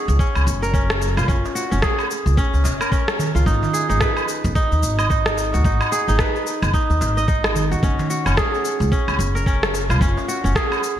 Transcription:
Already playing: C#4 D#4 F#4 G#4
0.08 C#2, cabasa
0.19 C#4, kick, cabasa
0.35 C#2, darbuka ka, cabasa, low woodblock
0.47 F#1, cabasa
0.62 A#4, cabasa
0.74 C#4, kick, cabasa
0.90 cross-stick, cabasa
1.02 darbuka ka, cabasa
1.17 C#2 F4, darbuka ka, cabasa, low woodblock
1.28 F#1 C#4, kick, cabasa
1.45 darbuka tek, cabasa
1.55 F#4, cabasa
1.71 F#1 C#4, darbuka ka, cabasa
1.82 G#4, kick, cross-stick, cabasa
1.99 cabasa, low woodblock
2.11 cabasa
2.26 C#2, cabasa
2.37 C#4, kick, cabasa
2.53 C#2, darbuka ka, cabasa
2.64 F#1, darbuka ka, darbuka tek, cabasa
2.81 A#4, cabasa, low woodblock
2.92 C#4, kick, cabasa
3.08 cross-stick, cabasa
3.19 darbuka dum, cabasa
3.35 C#2 F4, cabasa
3.46 G#1 D#4, kick, cabasa
3.62 darbuka tek, darbuka dum, cabasa
3.73 G#4, cabasa
3.89 G#1 D#4, darbuka ka, cabasa
4.01 B4, kick, cross-stick, cabasa
4.17 cabasa, low woodblock
4.28 cabasa
4.44 F#1, cabasa
4.55 D#4, kick, cabasa
4.71 D#2, darbuka ka, cabasa
4.83 G#1, cabasa
4.99 D#5, cabasa, low woodblock
5.10 D#4, kick, cabasa
5.26 cross-stick, cabasa
5.38 darbuka ka, cabasa
5.53 D#2 F#4, darbuka ka, cabasa
5.64 G#1 D#4, kick, cabasa
5.81 darbuka tek, cabasa, low woodblock
5.92 G#4, cabasa
6.08 G#1 D#4, darbuka ka, cabasa
6.19 B4, kick, cross-stick, cabasa
6.36 cabasa
6.47 cabasa
6.62 F#1, cabasa, low woodblock
6.74 D#4, kick, cabasa
6.90 D#2, darbuka ka, cabasa
7.01 G#1, darbuka ka, darbuka tek, cabasa
7.17 D#5, cabasa
7.28 D#4, kick, cabasa
7.44 cross-stick, cabasa, low woodblock
7.56 darbuka dum, cabasa
7.71 D#2 F#4, cabasa
7.83 F#1 C#4, kick, cabasa
7.99 darbuka tek, darbuka dum, cabasa
8.10 F#4, cabasa
8.26 F#1 C#4, darbuka ka, cabasa, low woodblock
8.37 G#4, kick, cross-stick, cabasa
8.54 cabasa
8.65 cabasa
8.80 C#2, cabasa
8.92 C#4, kick, cabasa
9.08 C#2, darbuka ka, cabasa, low woodblock
9.19 F#1, cabasa
9.35 A#4, cabasa
9.46 C#4, kick, cabasa
9.63 cross-stick, cabasa
9.74 darbuka ka, cabasa
9.90 C#2 F4, darbuka ka, cabasa, low woodblock
10.01 F#1 C#4, kick, cabasa
10.17 darbuka tek, cabasa
10.28 F#4, cabasa
10.44 F#1 C#4, darbuka ka, cabasa
10.55 G#4, kick, cross-stick, cabasa
10.72 cabasa, low woodblock
10.84 cabasa

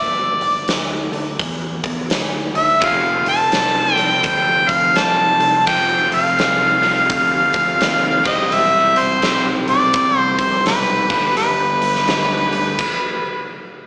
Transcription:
Already playing: G1 D5
0.41 G1, open hi-hat
0.68 D2, snare, open hi-hat
1.12 D2, open hi-hat
1.39 E2, kick, open hi-hat
1.84 E2, kick, open hi-hat
2.10 D2, snare, open hi-hat
2.55 D2 E5, open hi-hat
2.80 F1 F2 C3 F3 F#4 A#4 C#5, kick, open hi-hat
2.84 F5
3.04 F4 A4 C5
3.25 F1 A5, open hi-hat
3.52 C2, snare, open hi-hat
3.93 C2 F3 G5
3.97 F2 C3, open hi-hat
4.23 D2 G5, kick, open hi-hat
4.69 D2 F5, kick, open hi-hat
4.95 C2 A5, snare, open hi-hat
5.39 C2, open hi-hat
5.67 F1 F2 C3 F3 A#4 C#5 F#5 G5, kick, open hi-hat
5.91 A4 C5 F5
6.10 F1, open hi-hat
6.15 F5
6.39 C2, snare, open hi-hat
6.82 C2 F2 C3 F3, open hi-hat
7.10 D2, kick, open hi-hat
7.53 D2, kick, open hi-hat
7.81 D#2, snare, open hi-hat
8.24 E1 C3 G3 C4 E4 G4 D#5, kick, open hi-hat
8.51 E1 E5, open hi-hat
8.96 E1 C5, open hi-hat
9.22 B1 C3 G3 C4, snare, open hi-hat
9.67 B1 D5, open hi-hat
9.93 C2, kick, open hi-hat
10.18 C5
10.39 C2 C5, kick, open hi-hat
10.66 B1 B4, snare, open hi-hat
11.07 G1 D4 G4 B4, kick, open hi-hat
11.11 G2 D3 G3
11.36 G1 B4, open hi-hat
11.82 G1, open hi-hat
11.95 snare
12.08 D2 G2 D3 G3, snare, open hi-hat
12.52 D2, open hi-hat
12.79 kick, crash

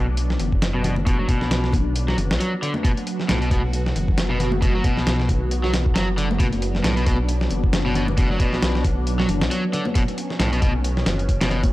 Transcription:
Already playing: B1 F#3 B3 D4
0.17 closed hi-hat
0.30 snare
0.40 F#1, closed hi-hat, low conga
0.52 kick
0.62 snare, closed hi-hat
0.74 B2
0.84 B2, closed hi-hat, low conga
0.96 high conga
1.06 B2, kick, closed hi-hat
1.19 F#3
1.29 B2, kick, closed hi-hat
1.41 B1, snare
1.51 B1, snare, closed hi-hat
1.64 snare
1.73 kick, closed hi-hat, high conga, low conga
1.96 closed hi-hat
2.08 F#3, snare
2.18 F#1, closed hi-hat, low conga
2.31 B1, snare
2.40 F#3, closed hi-hat
2.62 D3, closed hi-hat
2.74 high conga
2.84 B2 F#4, kick, closed hi-hat
2.97 closed hi-hat
3.07 closed hi-hat
3.20 snare
3.28 B1 A2, snare, closed hi-hat
3.41 B2, closed hi-hat
3.51 B2, kick, closed hi-hat, high conga
3.73 closed hi-hat
3.86 snare
3.96 F#1, closed hi-hat, low conga
4.08 kick
4.18 snare, closed hi-hat
4.30 B2
4.40 B2, closed hi-hat, low conga
4.52 high conga
4.62 B2, kick, closed hi-hat
4.75 F#3
4.84 B2, kick, closed hi-hat
4.97 B1, snare
5.07 B1, snare, closed hi-hat
5.20 snare
5.28 kick, closed hi-hat, high conga, low conga
5.51 closed hi-hat
5.64 F#3, snare
5.73 snare, closed hi-hat, low conga
5.86 kick
5.95 F#1 F#3, snare, closed hi-hat
6.17 D3, closed hi-hat
6.31 high conga
6.40 B2 D4, kick, closed hi-hat
6.52 closed hi-hat, high bongo
6.62 closed hi-hat
6.75 snare
6.84 B1 A2, snare, closed hi-hat
6.97 B2, closed hi-hat
7.06 B2, kick, closed hi-hat, high conga
7.29 closed hi-hat
7.41 snare
7.50 F#1, closed hi-hat, low conga
7.64 kick
7.73 snare, closed hi-hat
7.86 B2
7.95 B2, closed hi-hat, low conga
8.08 high conga
8.17 B2, kick, closed hi-hat
8.31 F#3
8.40 B2, kick, closed hi-hat
8.53 B1, snare
8.62 B1, snare, closed hi-hat
8.75 snare
8.84 kick, closed hi-hat, high conga, low conga
9.07 closed hi-hat
9.19 F#3, snare
9.29 F#1, closed hi-hat, low conga
9.41 B1, snare
9.51 F#3, closed hi-hat
9.73 D3, closed hi-hat
9.85 high conga
9.95 B2 C#4, kick, closed hi-hat
10.08 closed hi-hat, high bongo
10.18 closed hi-hat
10.30 snare
10.40 B1 A2, snare, closed hi-hat
10.52 B2, closed hi-hat
10.62 B2, kick, closed hi-hat, high conga
10.84 closed hi-hat
10.97 snare
11.06 F#1, snare, closed hi-hat, low conga
11.19 closed hi-hat
11.29 kick, closed hi-hat
11.41 B2, snare, closed hi-hat
11.51 B2, closed hi-hat, low conga
11.63 kick, closed hi-hat, high conga

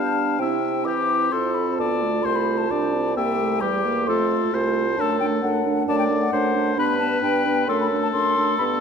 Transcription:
Already playing: G3 B3 D4 F5 A5
0.39 C3 C4 E4 E5 G5
0.63 C4
0.85 E3 G4 D6
1.32 F2 F4 A4 C6
1.54 B5
1.78 D2 B3 D5 A5
2.02 A3
2.23 C2 A3 C5 C6
2.36 B5
2.58 A5
2.70 C2 D4 D5
2.94 C4
3.16 C2 A#3 G4 E5 G5
3.39 A3
3.61 E2 G3 G4 D6
3.85 A#3
4.07 F2 A3 F4 A4 C6
4.53 C2 A3 F4 C5
4.97 F#2 A3 D4 A4 A5
5.20 A3 D4 G5
5.42 F#2 A3 D4 F#5
5.66 A3 D4
5.87 F#2 A3 D4 D5 A5
5.99 G5
6.09 A3 D4
6.21 F#5
6.32 F#2 A3 D4 C5
6.55 A3 D4
6.77 G2 B3 D4 B4 B5
6.99 B3 D4 A5
7.22 G2 B3 D4 G5
7.46 B3 D4
7.67 F#2 A3 D4 A4 C6
7.81 B5
7.91 A3 D4
8.03 A5
8.13 F#2 A3 D4 C6
8.37 A3 D4
8.58 G2 B3 D4 B5

